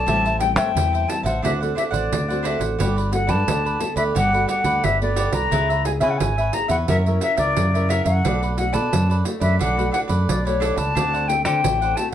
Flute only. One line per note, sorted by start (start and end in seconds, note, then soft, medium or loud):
0.00 0.39 A5 loud
0.40 0.56 G5 medium
0.57 1.11 G5 medium
1.09 1.24 A5 medium
1.25 1.41 F#5 medium
1.44 1.52 E5 medium
1.77 1.83 E5 medium
1.93 2.48 D5 medium
2.46 2.63 E5 medium
3.13 3.31 F#5 medium
3.30 3.97 A5 medium
3.97 4.03 E5 medium
4.17 4.48 F#5 medium
4.49 4.86 F#5 medium
4.84 5.01 E5 loud
5.02 5.35 D5 medium
5.33 5.85 A#5 loud
5.86 5.92 G#5 medium
6.02 6.12 G#5 medium
6.10 6.19 F#5 medium
6.18 6.55 G#5 medium
6.54 6.70 A#5 medium
6.70 6.76 F#5 medium
6.89 6.96 E5 medium
7.22 7.37 E5 medium
7.38 7.91 D5 medium
7.90 8.05 E5 medium
8.06 8.54 F#5 medium
8.58 8.75 F#5 medium
8.73 9.15 A5 medium
9.41 9.58 E5 medium
9.60 9.92 F#5 medium
9.93 10.00 F#5 medium
10.28 10.48 D5 medium
10.46 10.78 C#5 medium
10.77 11.30 A5 loud
11.28 11.44 G5 medium
11.45 11.97 G5 medium
11.96 12.11 A5 medium